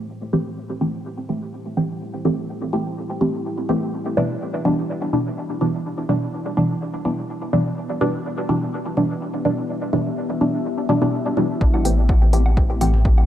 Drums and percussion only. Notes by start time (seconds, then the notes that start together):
11.61 kick
11.74 low woodblock
11.85 open hi-hat
12.09 kick, low woodblock
12.33 open hi-hat
12.46 low woodblock
12.57 kick
12.81 mid tom, open hi-hat, low woodblock
12.94 mid tom
13.05 kick
13.18 low woodblock